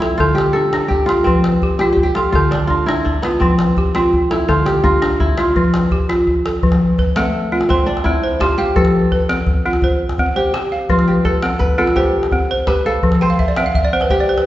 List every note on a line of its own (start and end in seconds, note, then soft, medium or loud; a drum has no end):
0.00 1.24 C4 medium
0.00 0.44 D4 medium
0.00 0.24 E4 medium
0.00 0.19 A4 medium
0.00 calabash click medium
0.18 0.56 D3 medium
0.18 1.06 F4 medium
0.18 0.74 A4 medium
0.18 calabash thump medium
0.35 0.88 G4 medium
0.35 calabash click medium
0.53 0.72 D4 medium
0.53 1.85 A4 medium
0.53 calabash click soft
0.73 1.09 D4 medium
0.73 calabash click medium
0.88 1.79 G4 medium
0.88 calabash thump medium
1.00 calabash click soft
1.06 2.14 F4 medium
1.06 1.45 F4 medium
1.06 calabash click medium
1.24 1.63 F3 medium
1.24 3.04 C4 medium
1.24 calabash thump medium
1.24 calabash click soft
1.44 calabash click medium
1.53 calabash click soft
1.62 2.17 G4 medium
1.62 calabash thump medium
1.71 calabash click soft
1.79 2.17 F4 medium
1.79 1.92 G4 medium
1.79 calabash click medium
1.92 2.03 G4 medium
1.97 calabash thump medium
1.97 calabash click soft
2.03 3.44 G4 medium
2.15 2.32 F4 medium
2.15 2.34 A4 medium
2.15 calabash click medium
2.32 2.71 D3 medium
2.32 2.67 F4 medium
2.32 2.89 A4 medium
2.32 calabash thump medium
2.51 3.04 D4 medium
2.51 calabash click medium
2.67 2.87 D4 medium
2.67 2.92 F4 medium
2.67 calabash thump medium
2.86 3.24 D4 medium
2.86 4.30 E4 medium
2.86 calabash click medium
3.05 4.73 D4 medium
3.05 calabash thump medium
3.15 calabash click soft
3.22 3.46 B3 medium
3.22 3.60 F4 medium
3.22 calabash click medium
3.40 3.78 F3 medium
3.40 3.94 C4 medium
3.40 calabash thump medium
3.40 calabash click soft
3.50 calabash click soft
3.59 calabash click medium
3.68 calabash click soft
3.77 4.31 G4 medium
3.77 calabash thump medium
3.86 calabash click soft
3.95 5.75 C4 medium
3.95 4.31 F4 medium
3.95 calabash click medium
4.13 calabash thump medium
4.13 calabash click soft
4.31 4.54 E4 medium
4.31 4.48 A4 medium
4.31 calabash click medium
4.48 4.85 D3 medium
4.48 4.83 F4 medium
4.48 5.02 A4 medium
4.48 calabash thump medium
4.66 6.07 G4 medium
4.66 calabash click medium
4.84 5.01 D4 medium
4.84 5.26 F4 medium
4.84 calabash thump medium
5.02 5.38 D4 medium
5.02 calabash click medium
5.20 5.44 E4 medium
5.20 calabash thump medium
5.29 calabash click soft
5.38 5.55 F4 medium
5.38 5.74 F4 medium
5.38 calabash click medium
5.56 5.92 F3 medium
5.56 7.07 F4 medium
5.56 calabash thump medium
5.74 calabash click medium
5.91 6.45 G4 medium
5.91 calabash thump medium
6.09 6.45 F4 medium
6.09 calabash click medium
6.27 calabash thump medium
6.46 6.81 A4 medium
6.46 calabash click medium
6.63 6.99 F3 medium
6.63 calabash thump medium
6.72 calabash click medium
6.99 7.52 B4 medium
6.99 calabash thump medium
6.99 calabash click soft
7.16 9.16 A3 medium
7.16 7.51 C4 medium
7.16 calabash click medium
7.52 7.70 C4 medium
7.52 7.88 F4 medium
7.61 calabash click medium
7.69 9.49 C4 medium
7.69 8.22 C5 medium
7.69 calabash thump medium
7.86 9.54 D4 medium
7.97 calabash click soft
8.04 8.41 C4 medium
8.04 8.46 E4 medium
8.04 calabash thump medium
8.04 calabash click soft
8.23 8.77 C5 medium
8.40 9.92 F4 medium
8.40 8.76 G4 medium
8.40 calabash thump medium
8.40 calabash click medium
8.58 9.99 G4 medium
8.58 8.94 F5 medium
8.76 9.12 F3 medium
8.76 10.08 A4 loud
8.76 calabash thump medium
8.85 calabash click soft
9.12 9.65 B4 medium
9.12 calabash thump medium
9.12 calabash click soft
9.29 9.64 C4 medium
9.29 calabash click medium
9.47 calabash thump medium
9.66 9.83 C4 medium
9.66 10.01 F4 medium
9.73 calabash click soft
9.82 10.35 C5 medium
9.82 calabash thump medium
10.09 calabash click soft
10.18 10.55 C4 medium
10.18 calabash thump medium
10.36 11.07 G4 medium
10.36 10.90 C5 medium
10.54 10.90 G4 medium
10.54 calabash click medium
10.72 11.08 F5 medium
10.89 11.25 F3 medium
10.89 12.41 F4 medium
10.89 calabash thump medium
10.99 calabash click soft
11.08 11.14 G4 medium
11.25 11.78 A4 medium
11.25 11.79 B4 medium
11.25 calabash thump medium
11.25 calabash click soft
11.42 11.77 C4 medium
11.42 calabash click medium
11.59 12.67 B4 medium
11.59 calabash thump medium
11.78 11.96 C4 medium
11.78 12.14 F4 medium
11.78 12.86 A4 medium
11.87 calabash click soft
11.96 13.37 G4 medium
11.96 12.50 C5 medium
11.96 calabash thump medium
12.23 calabash click soft
12.32 12.68 C4 medium
12.32 calabash thump medium
12.32 calabash click soft
12.51 13.04 C5 medium
12.67 13.03 G4 medium
12.67 13.28 B4 medium
12.67 calabash thump medium
12.67 calabash click medium
12.86 14.18 A4 medium
12.86 13.22 F5 medium
13.03 13.39 F3 medium
13.03 calabash thump medium
13.03 calabash click soft
13.12 calabash click soft
13.21 14.41 C5 loud
13.21 13.38 G5 medium
13.21 calabash click soft
13.30 13.47 F5 medium
13.39 13.56 E5 medium
13.39 calabash thump medium
13.48 13.65 D5 medium
13.56 13.92 C4 medium
13.56 13.74 E5 medium
13.56 calabash click medium
13.66 13.83 F5 medium
13.75 13.92 E5 medium
13.75 calabash thump medium
13.85 14.01 D5 medium
13.93 14.11 C4 medium
13.93 14.10 C5 medium
14.01 14.18 B4 medium
14.01 calabash click soft
14.10 14.46 G4 loud
14.10 14.27 C5 medium
14.10 calabash thump medium
14.20 14.37 D5 medium
14.28 14.45 C5 medium
14.28 calabash click soft
14.38 14.46 B4 medium
14.38 calabash click soft